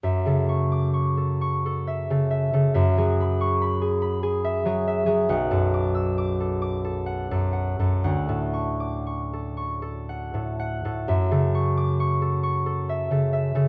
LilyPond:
<<
  \new Staff \with { instrumentName = "Harp" } { \time 6/8 \key fis \minor \tempo 4. = 44 << { r8. d'''8 r4. r16 | r8. cis'''8 r4. r16 | r8. e'''8 r4. r16 | r8. d'''8 r4. r16 |
r8. d'''8 r4. r16 | } \\ { e''16 a'16 cis'''8 cis'''16 a'16 cis'''16 a'16 e''16 a'16 e''16 a'16 | e''16 gis'16 b''8 b''16 gis'16 b''16 gis'16 e''16 gis'16 e''16 gis'16 | fis''16 a'16 d'''8 d'''16 a'16 d'''16 a'16 fis''16 a'16 fis''16 a'16 | fis''16 a'16 cis'''8 cis'''16 a'16 cis'''16 a'16 fis''16 a'16 fis''16 a'16 |
e''16 a'16 cis'''8 cis'''16 a'16 cis'''16 a'16 e''16 a'16 e''16 a'16 | } >> }
  \new Staff \with { instrumentName = "Harp" } { \clef bass \time 6/8 \key fis \minor fis,16 cis2 cis8 cis16 | fis,16 fis2 fis8 fis16 | b,,16 fis,2 fis,8 fis,16 | d,16 a,2 a,8 a,16 |
fis,16 cis2 cis8 cis16 | }
>>